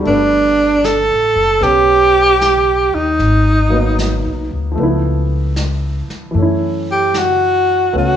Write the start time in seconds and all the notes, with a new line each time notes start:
Already playing: F#4
0.00 G3 A3
0.06 G1 B3 D4, brush sweep
0.84 A4, snare, hi-hat pedal
1.10 A1
1.36 F#1
1.61 B1 B3 C#4 G4, brush sweep, snare
2.41 snare, hi-hat pedal
2.92 D#2 D#4
3.19 G#1, brush sweep, snare
3.69 F#3 A#3 B3
3.75 D#4
3.99 snare, hi-hat pedal
4.25 B1
4.51 D2
4.72 F3 A3
4.77 C#2 B3, brush sweep
4.83 E4
5.56 snare, hi-hat pedal
6.08 muted upright bass stroke, snare
6.31 F#2 E3 A3
6.35 C#4, brush sweep
6.42 E4
6.92 G4
7.14 snare, hi-hat pedal
7.19 F#4
7.93 C#2 A3 B3 C#4, brush sweep
7.98 F#4